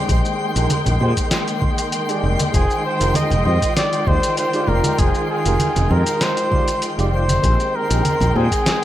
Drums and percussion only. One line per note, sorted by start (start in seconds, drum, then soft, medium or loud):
0.09 kick loud
0.09 closed hi-hat soft
0.09 shaker soft
0.25 shaker soft
0.56 closed hi-hat soft
0.56 shaker medium
0.70 closed hi-hat soft
0.70 high conga medium
0.70 shaker medium
0.86 closed hi-hat soft
0.86 low conga medium
0.86 shaker soft
1.00 low conga medium
1.17 kick medium
1.17 closed hi-hat soft
1.17 shaker medium
1.31 snare medium
1.31 closed hi-hat medium
1.31 shaker medium
1.48 closed hi-hat soft
1.48 shaker soft
1.62 kick loud
1.62 high conga medium
1.78 closed hi-hat soft
1.78 shaker medium
1.92 closed hi-hat soft
1.92 shaker soft
2.09 closed hi-hat soft
2.09 shaker soft
2.39 closed hi-hat soft
2.39 high conga medium
2.39 shaker medium
2.54 kick loud
2.54 closed hi-hat soft
2.54 shaker medium
2.71 shaker soft
3.01 closed hi-hat soft
3.01 shaker medium
3.14 closed hi-hat medium
3.14 high conga medium
3.14 shaker medium
3.31 closed hi-hat soft
3.31 low conga medium
3.31 shaker soft
3.45 low conga medium
3.62 kick medium
3.62 closed hi-hat soft
3.62 shaker medium
3.77 snare medium
3.77 closed hi-hat soft
3.77 shaker medium
3.93 closed hi-hat soft
3.93 shaker soft
4.07 kick medium
4.07 high conga medium
4.23 closed hi-hat soft
4.23 shaker medium
4.37 closed hi-hat soft
4.37 shaker soft
4.53 closed hi-hat soft
4.53 shaker soft
4.67 low conga medium
4.84 closed hi-hat soft
4.84 high conga medium
4.84 shaker medium
4.98 kick loud
4.98 closed hi-hat medium
4.98 shaker soft
5.15 shaker soft
5.45 closed hi-hat soft
5.45 shaker medium
5.60 closed hi-hat medium
5.60 high conga medium
5.60 shaker soft
5.76 closed hi-hat soft
5.76 low conga medium
5.76 shaker soft
5.91 low conga medium
6.06 closed hi-hat soft
6.06 shaker medium
6.21 snare medium
6.21 closed hi-hat medium
6.21 shaker soft
6.37 closed hi-hat soft
6.37 shaker soft
6.52 kick loud
6.52 high conga medium
6.68 closed hi-hat soft
6.68 shaker medium
6.82 closed hi-hat medium
6.82 shaker medium
6.99 closed hi-hat soft
6.99 shaker soft
7.29 closed hi-hat soft
7.29 high conga medium
7.29 shaker medium
7.43 kick loud
7.43 closed hi-hat soft
7.43 shaker soft
7.60 shaker soft
7.91 closed hi-hat soft
7.91 shaker medium
8.05 closed hi-hat medium
8.05 high conga medium
8.05 shaker soft
8.21 closed hi-hat soft
8.21 low conga medium
8.21 shaker soft
8.36 low conga medium
8.52 kick medium
8.52 closed hi-hat soft
8.52 shaker medium
8.66 snare medium
8.66 closed hi-hat medium
8.66 shaker medium